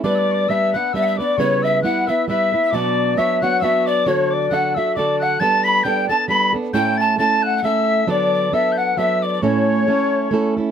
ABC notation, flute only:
X:1
M:3/4
L:1/8
Q:"Swing" 1/4=134
K:Glyd
V:1 name="Flute"
d2 e f e d | c e f e e2 | d2 e f e d | c d f e d f |
a b g a b z | g a a f e2 | d2 e f e d | c4- c z |]